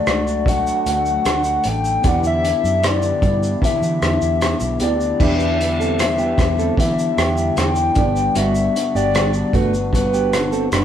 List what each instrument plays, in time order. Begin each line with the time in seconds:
Already playing: upright piano F#3 A3 D4 D5, analog synth pad F#3 A3 D4, soft synth lead D5
0.07 fingered electric bass C#2, clean electric guitar A3 D4 F#4, cross-stick, closed hi-hat, shaker
0.27 shaker
0.46 clean electric guitar A3 D4 F#4, soft synth lead F#5, kick, closed hi-hat, shaker
0.67 shaker
0.86 fingered electric bass D2, clean electric guitar A3 D4 F#4, soft synth lead F#5, closed hi-hat, shaker
1.06 shaker
1.25 fingered electric bass D2, clean electric guitar D3 A3 D4 F#4, cross-stick, closed hi-hat, shaker
1.44 shaker
1.64 fingered electric bass A1, clean electric guitar A3 D4, soft synth lead G5, closed hi-hat, shaker
1.85 shaker
2.02 fingered electric bass E2, analog synth pad D3 E3 B3 E4 G4, clean electric guitar E3 B3 D4 G4, upright piano B3 E4 G4, kick, closed hi-hat, shaker
2.07 upright piano D5, soft synth lead F#5
2.24 soft synth lead E5, shaker
2.43 clean electric guitar B3 D4 G4, closed hi-hat, shaker
2.64 fingered electric bass F#2, shaker
2.83 clean electric guitar E3 B3 D4 G4, soft synth lead D5, cross-stick, closed hi-hat, shaker
3.02 shaker
3.22 fingered electric bass G2, clean electric guitar B3 D4 G4, kick, closed hi-hat, shaker
3.43 shaker
3.62 clean electric guitar E3 B3 D4 G4, soft synth lead E5, kick, closed hi-hat, shaker
3.82 fingered electric bass E3, shaker
4.02 fingered electric bass E2, clean electric guitar B3 D4 G4, cross-stick, closed hi-hat, shaker
4.22 fingered electric bass E2, shaker
4.41 clean electric guitar E3 B3 D4 G4, cross-stick, closed hi-hat, shaker
4.60 fingered electric bass B1, shaker
4.79 fingered electric bass D2, upright piano B3 E4 G4 D5, clean electric guitar B3 D4 G4, soft synth lead D5, closed hi-hat, shaker
5.01 shaker
5.17 fingered electric bass E2, analog synth pad D3 E3 G3 B3 E4, clean electric guitar E3 B3 D4 B4, upright piano B3 E4 G4, kick, crash
5.21 clean electric guitar D4 G4, upright piano D5, soft synth lead E5
5.40 shaker
5.59 clean electric guitar B3 D4 G4, closed hi-hat, shaker
5.80 clean electric guitar C4 A4, shaker
5.99 clean electric guitar E3 B3 D4 G4, soft synth lead E5, cross-stick, closed hi-hat, shaker
6.18 clean electric guitar B3 G4, shaker
6.38 fingered electric bass E2, clean electric guitar B3 D4 G4, kick, cross-stick, closed hi-hat, shaker
6.59 clean electric guitar C4 A4, shaker
6.77 fingered electric bass E3, clean electric guitar E3 B3 D4 G4, soft synth lead E5, kick, closed hi-hat, shaker
6.99 shaker
7.17 fingered electric bass E2, clean electric guitar B3 D4 G4, cross-stick, closed hi-hat, shaker
7.37 shaker
7.56 fingered electric bass E2, clean electric guitar E3 B3 D4 G4, soft synth lead G5, cross-stick, closed hi-hat, shaker
7.75 shaker
7.94 fingered electric bass G1, upright piano B3 D4 G4, analog synth pad D4, clean electric guitar D4, kick, closed hi-hat, shaker
7.98 clean electric guitar B3, upright piano D5
8.16 shaker
8.35 fingered electric bass G1, clean electric guitar G3 B3 D4 F#4, soft synth lead E5, closed hi-hat, shaker
8.55 shaker
8.75 clean electric guitar B3 D4 F#4, closed hi-hat, shaker
8.95 fingered electric bass G1, clean electric guitar B3 G4, soft synth lead D5, shaker
9.14 clean electric guitar G3 B3 D4 F#4, cross-stick, closed hi-hat, shaker
9.34 shaker
9.53 fingered electric bass G1, clean electric guitar A3 B3 D4 F#4, soft synth lead B4, kick, closed hi-hat, shaker
9.74 shaker
9.93 clean electric guitar G3 B3 D4 F#4, soft synth lead B4, kick, closed hi-hat, shaker
10.14 clean electric guitar B3 G4, shaker
10.32 clean electric guitar B3 D4 F#4, cross-stick, closed hi-hat, shaker
10.52 clean electric guitar C4 A4, shaker
10.72 fingered electric bass F#1, clean electric guitar G3 B3 D4 F#4 B4, cross-stick, closed hi-hat, shaker